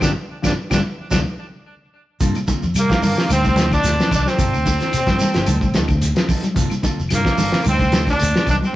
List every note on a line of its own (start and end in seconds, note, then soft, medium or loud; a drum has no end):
0.01 0.13 G1 medium
0.01 0.11 D3 medium
0.01 0.11 F3 medium
0.01 0.12 F3 medium
0.01 0.11 G3 medium
0.01 0.12 G3 medium
0.01 0.12 A#3 medium
0.01 0.12 D4 medium
0.01 0.10 D4 medium
0.01 0.11 F4 loud
0.01 0.12 G4 medium
0.01 kick medium
0.01 snare medium
0.01 high conga medium
0.01 claves medium
0.01 shekere medium
0.42 0.54 G1 medium
0.42 0.52 D3 medium
0.42 0.51 F3 medium
0.42 0.53 F3 loud
0.42 0.52 G3 medium
0.42 0.53 G3 loud
0.42 0.53 A#3 medium
0.42 0.52 D4 medium
0.42 0.52 F4 medium
0.42 0.52 G4 medium
0.42 kick medium
0.42 snare medium
0.42 high conga medium
0.42 claves medium
0.42 shekere medium
0.46 0.52 D4 medium
0.70 0.81 G1 medium
0.70 0.80 D3 loud
0.70 0.80 F3 medium
0.70 0.80 F3 loud
0.70 0.80 G3 loud
0.70 0.80 G3 medium
0.70 0.79 A#3 medium
0.70 0.79 D4 medium
0.70 0.79 F4 medium
0.70 0.79 G4 medium
0.70 kick medium
0.70 snare medium
0.70 high conga loud
0.70 claves medium
0.70 shekere medium
1.10 1.23 D2 medium
1.10 1.21 C3 medium
1.10 1.21 D3 medium
1.10 1.21 F#3 medium
1.10 1.21 A3 medium
1.10 1.20 C4 medium
1.10 1.21 C4 medium
1.10 1.21 D4 medium
1.10 1.19 D4 medium
1.10 1.21 D4 loud
1.10 1.21 F#4 medium
1.10 kick medium
1.10 snare medium
1.10 high conga medium
1.10 claves medium
1.10 shekere medium
2.20 2.33 G2 medium
2.20 2.43 C3 medium
2.20 2.38 A#3 medium
2.20 2.38 C4 loud
2.20 2.38 F4 medium
2.20 2.38 A4 medium
2.20 kick medium
2.20 closed hi-hat medium
2.20 shekere medium
2.35 closed hi-hat soft
2.35 high conga medium
2.35 claves medium
2.35 shekere soft
2.47 2.71 D3 medium
2.47 2.65 A#3 medium
2.47 2.65 C4 medium
2.47 2.65 F4 medium
2.47 muted fingered electric bass stroke soft
2.47 kick medium
2.47 closed hi-hat soft
2.47 high conga medium
2.47 shekere medium
2.63 2.73 F2 medium
2.63 low conga medium
2.63 shekere soft
2.75 2.98 C3 medium
2.75 2.88 G3 loud
2.75 closed hi-hat medium
2.75 claves medium
2.75 shekere medium
2.79 3.28 A#3 medium
2.90 kick medium
2.90 snare medium
2.90 high conga medium
2.90 shekere soft
3.02 3.15 G2 medium
3.02 3.25 D3 medium
3.02 3.20 C4 medium
3.02 3.20 F4 medium
3.02 3.20 A4 medium
3.02 open hi-hat medium
3.02 high conga medium
3.02 low conga medium
3.02 shekere medium
3.17 snare medium
3.17 shekere soft
3.28 3.75 D2 loud
3.28 3.42 D3 medium
3.28 3.46 F#3 medium
3.28 3.47 C4 medium
3.28 3.47 D#4 medium
3.28 3.47 A4 medium
3.28 closed hi-hat medium
3.28 high conga medium
3.28 claves medium
3.28 shekere medium
3.33 3.70 C4 medium
3.33 3.70 C4 loud
3.44 3.66 C3 medium
3.44 kick medium
3.44 closed hi-hat soft
3.44 high conga medium
3.44 shekere soft
3.56 3.71 F#3 medium
3.56 3.72 C4 medium
3.56 3.71 D#4 medium
3.56 3.70 A4 medium
3.56 snare medium
3.56 closed hi-hat soft
3.56 high conga loud
3.56 shekere medium
3.71 3.93 D3 medium
3.71 3.88 C4 soft
3.71 4.10 D4 medium
3.71 4.10 D4 loud
3.71 3.88 D#4 medium
3.71 3.87 A4 soft
3.71 kick medium
3.71 snare soft
3.71 closed hi-hat soft
3.71 claves medium
3.71 shekere soft
3.84 3.97 D2 medium
3.84 snare soft
3.84 closed hi-hat medium
3.84 shekere loud
3.99 4.21 F#3 medium
3.99 snare medium
3.99 shekere soft
4.11 4.23 C2 medium
4.11 4.29 F#3 medium
4.11 4.29 C4 medium
4.11 4.31 D4 medium
4.11 4.29 D#4 medium
4.11 4.29 A4 medium
4.11 kick medium
4.11 closed hi-hat medium
4.11 low conga medium
4.11 claves medium
4.11 shekere medium
4.15 4.29 D4 loud
4.25 4.36 F#3 medium
4.25 5.90 C4 loud
4.25 snare soft
4.25 shekere soft
4.30 5.91 C4 medium
4.38 4.51 G1 loud
4.38 4.60 C3 medium
4.38 4.56 A#3 medium
4.38 4.56 C4 medium
4.38 4.56 F4 medium
4.38 4.56 A4 medium
4.38 kick medium
4.38 closed hi-hat medium
4.38 shekere medium
4.53 4.76 D2 medium
4.53 claves medium
4.53 shekere soft
4.65 4.88 D3 medium
4.65 4.83 A#3 medium
4.65 4.83 C4 medium
4.65 4.84 F4 medium
4.65 4.84 A4 medium
4.65 kick medium
4.65 closed hi-hat soft
4.65 high conga medium
4.65 shekere medium
4.80 snare soft
4.80 closed hi-hat soft
4.80 low conga medium
4.80 shekere soft
4.92 5.15 C3 medium
4.92 closed hi-hat medium
4.92 claves medium
4.92 shekere medium
5.07 5.18 G1 medium
5.07 kick medium
5.07 snare medium
5.07 closed hi-hat soft
5.07 high conga medium
5.07 shekere soft
5.18 5.36 A#3 medium
5.18 5.37 C4 medium
5.18 5.37 F4 medium
5.18 5.38 A4 medium
5.18 muted clean electric guitar stroke medium
5.18 closed hi-hat medium
5.18 high conga medium
5.18 low conga medium
5.18 shekere medium
5.34 5.45 G1 medium
5.34 snare medium
5.34 closed hi-hat soft
5.34 shekere soft
5.46 5.60 D2 medium
5.46 5.59 D3 medium
5.46 5.64 F#3 medium
5.46 5.65 A4 medium
5.46 muted clean electric guitar stroke medium
5.46 closed hi-hat medium
5.46 high conga medium
5.46 claves medium
5.46 shekere medium
5.61 5.72 A1 medium
5.61 5.84 C3 medium
5.61 kick medium
5.61 high conga medium
5.61 shekere soft
5.74 5.88 D2 medium
5.74 5.92 F#3 medium
5.74 5.92 C4 medium
5.74 5.93 D#4 medium
5.74 5.93 A4 medium
5.74 snare medium
5.74 closed hi-hat medium
5.74 high conga loud
5.74 shekere medium
5.88 6.12 D2 medium
5.88 6.11 D3 medium
5.88 kick medium
5.88 closed hi-hat soft
5.88 claves medium
5.88 shekere soft
6.02 closed hi-hat medium
6.02 shekere medium
6.15 6.38 F#3 medium
6.15 snare medium
6.15 closed hi-hat soft
6.15 shekere soft
6.28 6.46 F#3 medium
6.28 6.46 C4 medium
6.28 6.47 D#4 medium
6.28 6.47 A4 medium
6.28 kick medium
6.28 open hi-hat medium
6.28 low conga medium
6.28 claves medium
6.28 shekere medium
6.43 6.53 F#3 medium
6.43 closed hi-hat soft
6.43 high conga medium
6.43 shekere soft
6.54 6.68 G1 medium
6.54 6.77 C3 loud
6.54 6.73 A#3 medium
6.54 6.74 C4 medium
6.54 6.74 F4 medium
6.54 6.74 A4 medium
6.54 kick medium
6.54 closed hi-hat medium
6.54 shekere medium
6.70 closed hi-hat soft
6.70 high conga medium
6.70 claves medium
6.70 shekere soft
6.82 7.05 D3 medium
6.82 7.01 A#3 medium
6.82 7.01 C4 medium
6.82 7.01 F4 medium
6.82 7.01 A4 medium
6.82 muted fingered electric bass stroke soft
6.82 kick medium
6.82 closed hi-hat soft
6.82 high conga medium
6.82 shekere medium
6.99 7.10 F1 medium
6.99 shekere soft
7.09 7.23 G2 medium
7.09 7.33 C3 medium
7.09 snare soft
7.09 closed hi-hat medium
7.09 claves medium
7.09 shekere medium
7.14 7.64 A#3 medium
7.14 7.65 A#3 medium
7.25 kick medium
7.25 snare medium
7.25 shekere soft
7.37 7.51 G1 medium
7.37 7.60 D3 medium
7.37 7.55 A#3 medium
7.37 7.55 C4 medium
7.37 7.55 F4 medium
7.37 7.56 A4 medium
7.37 open hi-hat medium
7.37 high conga medium
7.37 low conga loud
7.37 shekere medium
7.52 snare medium
7.52 shekere soft
7.64 8.12 D2 medium
7.64 7.77 D3 medium
7.64 7.82 F#3 medium
7.64 7.83 C4 medium
7.64 7.83 D#4 medium
7.64 7.83 A4 medium
7.64 closed hi-hat medium
7.64 high conga medium
7.64 claves medium
7.64 shekere medium
7.69 8.06 C4 medium
7.69 8.07 C4 loud
7.79 8.02 C3 medium
7.79 kick medium
7.79 closed hi-hat soft
7.79 high conga medium
7.79 shekere soft
7.92 8.07 F#3 medium
7.92 8.06 C4 medium
7.92 8.06 D#4 medium
7.92 8.05 A4 medium
7.92 snare medium
7.92 closed hi-hat soft
7.92 high conga medium
7.92 shekere medium
8.06 8.30 D3 medium
8.06 8.23 C4 soft
8.06 8.46 D4 medium
8.06 8.23 D#4 soft
8.06 8.22 A4 medium
8.06 kick medium
8.06 snare soft
8.06 closed hi-hat soft
8.06 claves medium
8.06 shekere soft
8.11 8.46 D4 loud
8.19 8.32 D2 medium
8.19 closed hi-hat medium
8.19 shekere loud
8.36 8.57 F#3 medium
8.36 snare medium
8.36 shekere soft
8.46 8.59 C2 medium
8.46 8.64 F#3 medium
8.46 8.64 C4 medium
8.46 8.56 D4 medium
8.46 8.64 D#4 medium
8.46 8.64 A4 medium
8.46 kick medium
8.46 closed hi-hat medium
8.46 low conga medium
8.46 claves medium
8.46 shekere medium
8.51 8.56 D4 loud
8.62 8.72 F#3 medium
8.62 8.76 C4 medium
8.62 8.76 C4 loud
8.62 high conga medium
8.62 shekere soft